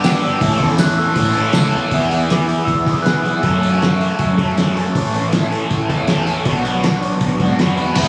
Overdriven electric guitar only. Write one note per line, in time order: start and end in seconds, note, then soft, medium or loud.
0.04 0.22 B3 medium
0.04 0.23 D4 medium
0.04 0.23 G4 medium
0.23 0.40 B3 medium
0.23 0.41 D4 medium
0.23 0.41 G4 medium
0.40 0.60 E3 loud
0.40 0.60 A3 medium
0.40 0.61 C#4 loud
0.40 0.62 A4 loud
0.61 0.78 E3 medium
0.61 0.78 A3 medium
0.61 0.79 C#4 loud
0.61 0.80 A4 loud
0.79 0.97 E3 medium
0.79 0.98 A3 medium
0.79 0.99 C#4 medium
0.79 0.98 A4 loud
0.98 1.16 E3 medium
0.98 1.16 A3 medium
0.98 1.17 C#4 medium
0.98 1.17 A4 medium
1.17 1.35 E3 loud
1.17 1.35 A3 loud
1.17 1.36 C#4 loud
1.17 1.36 A4 loud
1.36 1.54 E3 medium
1.36 1.55 A3 medium
1.36 1.55 C#4 medium
1.36 1.56 A4 loud
1.55 1.73 E3 medium
1.55 1.74 A3 loud
1.55 1.74 C#4 medium
1.55 1.75 A4 medium
1.74 1.90 E3 medium
1.74 1.92 A3 medium
1.74 1.92 C#4 medium
1.74 1.92 A4 medium
1.92 2.30 E3 medium
1.92 2.11 B3 medium
1.92 2.11 E4 medium
1.92 2.08 G#4 medium
2.10 2.30 B3 soft
2.10 2.32 E4 medium
2.10 2.32 G#4 medium
2.30 3.04 E3 medium
2.30 2.89 B3 medium
2.30 2.88 E4 medium
2.30 2.85 G#4 medium
2.87 3.04 B3 soft
2.87 3.06 E4 medium
2.87 3.06 G#4 medium
3.04 3.43 E3 medium
3.04 3.27 B3 medium
3.04 3.26 E4 medium
3.04 3.23 G#4 medium
3.24 3.43 B3 medium
3.24 3.45 E4 medium
3.24 3.42 G#4 medium
3.43 3.80 F#3 medium
3.43 3.66 A3 medium
3.43 3.65 C#4 medium
3.43 3.62 A4 medium
3.62 3.83 C#4 medium
3.62 3.84 A4 medium
3.67 3.82 A3 soft
3.81 4.57 F#3 medium
3.81 4.41 A3 medium
3.81 4.40 C#4 medium
3.81 4.36 A4 medium
4.38 4.60 C#4 medium
4.38 4.60 A4 medium
4.42 4.58 A3 soft
4.58 4.94 F#3 medium
4.58 4.78 A3 medium
4.58 4.78 C#4 medium
4.58 4.75 A4 medium
4.76 4.95 A3 medium
4.76 4.97 C#4 medium
4.76 4.93 A4 medium
4.95 5.32 E3 medium
4.95 5.16 A3 medium
4.95 5.15 C#4 medium
4.95 5.13 A4 loud
5.14 5.34 A3 medium
5.14 5.35 C#4 medium
5.14 5.35 A4 medium
5.34 6.06 E3 medium
5.34 5.91 A3 medium
5.34 5.90 C#4 medium
5.34 5.88 A4 medium
5.89 6.07 A3 soft
5.89 6.09 C#4 medium
5.89 6.09 A4 medium
6.07 6.44 E3 medium
6.07 6.28 A3 medium
6.07 6.27 C#4 medium
6.07 6.25 A4 medium
6.27 6.46 A3 medium
6.27 6.45 C#4 medium
6.27 6.44 A4 medium
6.45 6.81 F#3 medium
6.45 6.66 B3 medium
6.45 6.65 D4 medium
6.45 6.63 F#4 medium
6.65 6.83 B3 medium
6.65 6.84 D4 medium
6.65 6.85 F#4 medium
6.82 7.58 F#3 medium
6.82 7.43 B3 medium
6.82 7.41 D4 medium
6.82 7.40 F#4 medium
7.41 7.60 B3 medium
7.41 7.61 D4 medium
7.41 7.62 F#4 medium
7.60 7.96 F#3 medium
7.60 7.82 B3 medium
7.60 7.80 D4 medium
7.60 7.78 F#4 medium
7.79 7.98 B3 medium
7.79 7.97 D4 medium
7.79 7.96 F#4 medium
7.99 8.08 B3 loud
7.99 8.08 E4 loud
7.99 8.08 G#4 loud